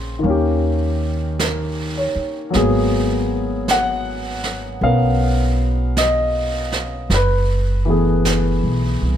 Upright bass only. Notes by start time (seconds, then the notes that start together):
Already playing: A#1
0.24 D#2
2.15 muted upright bass stroke
2.55 G#1
4.81 B1
7.10 F#1
8.63 B1
9.01 C2